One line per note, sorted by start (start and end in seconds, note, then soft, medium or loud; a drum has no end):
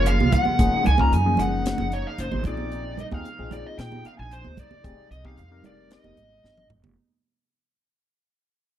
0.00 0.17 F#1 medium
0.00 2.42 C#3 medium
0.00 2.42 F3 medium
0.00 4.80 G#3 medium
0.00 4.80 A#3 medium
0.00 0.58 F4 medium
0.06 0.31 F5 medium
0.06 closed hi-hat medium
0.20 0.31 C2 medium
0.20 high conga medium
0.32 0.86 F#5 loud
0.32 kick medium
0.32 closed hi-hat medium
0.32 low conga medium
0.45 muted upright bass stroke soft
0.45 high conga medium
0.59 0.71 F#1 loud
0.59 0.84 A#3 medium
0.59 0.84 C#4 medium
0.59 6.92 D#4 medium
0.59 0.84 F4 medium
0.59 0.84 G#4 medium
0.59 kick loud
0.59 closed hi-hat medium
0.74 muted upright bass stroke soft
0.84 1.13 C#2 medium
0.84 1.01 G#5 medium
0.84 closed hi-hat medium
0.84 low conga medium
0.98 1.16 A#3 medium
0.98 1.16 C#4 medium
0.98 1.16 F4 medium
0.98 1.16 A#4 medium
0.98 1.13 A#5 medium
0.98 kick medium
0.98 high conga medium
1.12 1.35 F#2 medium
1.12 1.40 G#5 medium
1.12 closed hi-hat medium
1.26 1.91 F3 medium
1.26 1.91 A#3 medium
1.26 1.91 C#4 medium
1.26 1.91 G#4 medium
1.37 1.74 F#1 medium
1.37 1.94 F#5 medium
1.37 closed hi-hat medium
1.37 low conga medium
1.66 snare loud
1.66 closed hi-hat medium
1.78 2.02 F#1 medium
1.78 high conga medium
1.92 2.06 C#5 medium
1.92 closed hi-hat medium
2.07 2.20 F5 medium
2.18 2.30 F#1 medium
2.18 2.46 C5 medium
2.18 closed hi-hat medium
2.32 2.44 G#1 medium
2.32 high conga medium
2.44 3.02 A#1 loud
2.44 6.92 C3 medium
2.44 4.82 F3 medium
2.44 2.99 C4 medium
2.44 2.99 D#4 medium
2.44 2.99 F4 medium
2.44 2.99 G#4 medium
2.44 3.00 D5 loud
2.44 kick loud
2.44 closed hi-hat medium
2.44 low conga medium
2.57 high conga medium
2.72 closed hi-hat medium
2.97 3.05 D#5 medium
2.97 closed hi-hat medium
2.97 low conga medium
3.11 3.23 D#2 medium
3.11 3.28 C4 medium
3.11 3.28 D#4 medium
3.11 3.28 F4 medium
3.11 3.28 G#4 medium
3.11 3.53 F5 medium
3.11 kick medium
3.11 high conga medium
3.25 closed hi-hat medium
3.39 3.61 A#1 medium
3.39 4.04 C4 medium
3.39 4.04 D#4 medium
3.39 4.04 F4 medium
3.39 4.04 G#4 medium
3.51 3.65 D5 medium
3.51 closed hi-hat medium
3.51 low conga medium
3.67 3.79 D#5 medium
3.78 4.01 A#2 medium
3.78 4.06 G5 loud
3.78 snare loud
3.78 closed hi-hat medium
3.92 high conga medium
4.05 4.12 F5 medium
4.05 muted upright bass stroke soft
4.05 closed hi-hat medium
4.19 4.41 A#1 medium
4.19 4.31 G#5 medium
4.31 4.59 C5 medium
4.31 closed hi-hat medium
4.44 4.56 D2 medium
4.44 high conga medium
4.57 5.11 D5 medium
4.57 kick medium
4.57 closed hi-hat medium
4.57 low conga medium
4.71 muted upright bass stroke soft
4.71 high conga medium
4.84 4.96 F1 loud
4.84 6.95 F3 medium
4.84 6.95 G3 medium
4.84 6.95 G#3 medium
4.84 5.09 C4 medium
4.84 5.09 D#4 medium
4.84 5.08 G4 medium
4.84 5.09 G#4 medium
4.84 kick loud
4.84 closed hi-hat medium
4.98 muted upright bass stroke soft
5.11 5.39 C2 medium
5.11 5.25 D#5 medium
5.11 closed hi-hat medium
5.24 5.41 C4 medium
5.24 5.41 D#4 medium
5.24 5.41 G4 medium
5.24 5.41 G#4 medium
5.24 5.65 F5 medium
5.24 kick medium
5.24 high conga medium
5.38 5.60 F2 medium
5.38 closed hi-hat medium
5.51 6.16 C4 medium
5.51 6.16 D#4 medium
5.51 6.16 G4 medium
5.51 6.16 A#4 medium
5.64 5.98 F1 medium
5.64 5.92 D5 medium
5.64 closed hi-hat medium
5.64 low conga medium
5.91 6.67 D#5 medium
5.91 snare loud
5.91 closed hi-hat medium
6.04 6.15 F1 medium
6.04 high conga medium
6.17 6.41 G#1 medium
6.17 closed hi-hat medium
6.44 6.67 G1 medium
6.44 snare medium
6.57 high tom medium
6.70 6.94 F1 medium
6.70 mid tom medium
6.84 floor tom medium
6.84 high conga medium